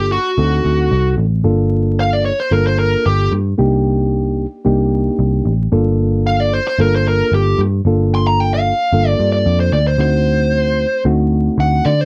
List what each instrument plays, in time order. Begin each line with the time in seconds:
Already playing: picked electric bass G1, reed electric piano A#3 D4 F4 A4, lead electric guitar G4
0.12 lead electric guitar F#4
0.38 picked electric bass D2, reed electric piano C4 D#4 F#4 A4
0.65 picked electric bass D2
0.91 picked electric bass C2
1.18 picked electric bass A1
1.44 picked electric bass G1, reed electric piano A#3 D4 F4 A4
2.00 lead electric guitar F5
2.13 lead electric guitar D5
2.25 lead electric guitar C#5
2.40 lead electric guitar C5
2.51 picked electric bass G1, reed electric piano A#3 D4 F4 A4, lead electric guitar A#4
2.67 lead electric guitar C5
2.79 lead electric guitar A#4
3.06 picked electric bass G1, lead electric guitar G4
3.32 picked electric bass G2
3.58 picked electric bass C2, reed electric piano A#3 D4 D#4 G4
4.65 picked electric bass C2, reed electric piano A#3 D4 D#4 G4
5.19 picked electric bass C2
5.45 picked electric bass A1
5.72 picked electric bass G1, reed electric piano A#3 D4 F4 A4
6.27 lead electric guitar F5
6.40 lead electric guitar D5
6.54 lead electric guitar C5
6.67 lead electric guitar C5
6.78 picked electric bass G1, reed electric piano A#3 D4 F4 A4, lead electric guitar A#4
6.95 lead electric guitar C5
7.08 lead electric guitar A#4
7.32 picked electric bass G1, lead electric guitar G4
7.58 picked electric bass G2
7.85 picked electric bass G1, reed electric piano A#3 D4 F4 A4
8.15 lead electric guitar C6
8.27 lead electric guitar A#5
8.40 lead electric guitar G5
8.54 lead electric guitar F5
8.93 picked electric bass G1, reed electric piano A#3 D4 F4 A4
9.08 lead electric guitar D5
9.19 picked electric bass G2
9.32 lead electric guitar D5
9.46 picked electric bass F2
9.60 lead electric guitar C5
9.72 picked electric bass D2, lead electric guitar D5
9.87 lead electric guitar C5
9.98 picked electric bass D2, reed electric piano A3 C4 D#4 F#4, lead electric guitar C5
11.05 picked electric bass D2, reed electric piano A3 C4 D#4 F#4
11.58 picked electric bass D2, lead electric guitar F#5
11.85 picked electric bass D3, lead electric guitar D5
12.01 lead electric guitar C5